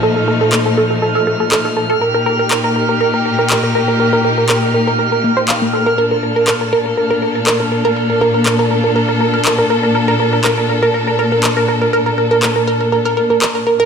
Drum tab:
CP |--x---x-|--x---x-|--x---x-|--x---x-|

CP |--x---x-|--x---x-|--x---x-|